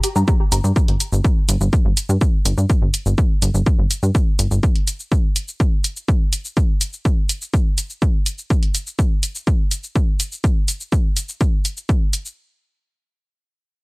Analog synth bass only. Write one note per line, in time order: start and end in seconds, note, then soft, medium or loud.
0.16 0.24 G2 medium
0.52 0.60 G1 medium
0.64 0.72 G2 medium
0.88 0.96 G1 medium
1.13 1.21 G1 medium
1.49 1.57 G1 loud
1.61 1.69 G1 medium
1.85 1.93 G1 medium
2.09 2.17 G2 medium
2.45 2.54 G1 medium
2.58 2.66 G2 medium
2.82 2.90 G1 medium
3.06 3.14 G1 medium
3.42 3.50 G1 medium
3.54 3.62 G1 medium
3.79 3.87 G1 medium
4.03 4.11 G2 medium
4.39 4.47 G1 medium
4.51 4.59 G1 medium